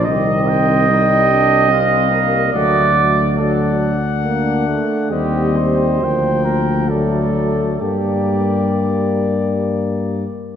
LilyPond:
<<
  \new Staff \with { instrumentName = "Cornet" } { \time 3/4 \key g \minor \tempo 4 = 69 ees''8 g''4. f''4 | fis''8 r8 fis''2 | ees''4 g''4 d''4 | d''2~ d''8 r8 | }
  \new Staff \with { instrumentName = "Flugelhorn" } { \time 3/4 \key g \minor ees''2. | d''4 a'8 r4. | g'8 c''4 bes'8 a'4 | g'2 r4 | }
  \new Staff \with { instrumentName = "Trombone section" } { \time 3/4 \key g \minor c'4 ees'8 d'8 c'8 bes8 | a8 a8 d'4 d'4 | c'4 bes4 a4 | bes2~ bes8 r8 | }
  \new Staff \with { instrumentName = "Trombone" } { \clef bass \time 3/4 \key g \minor ees4 g4 g4 | fis4 fis8 r8 bes8 a8 | g4 f4 fis4 | g2~ g8 r8 | }
  \new Staff \with { instrumentName = "Tuba" } { \clef bass \time 3/4 \key g \minor c,2. | d,2~ d,8 r8 | ees,4 d,2 | g,2~ g,8 r8 | }
>>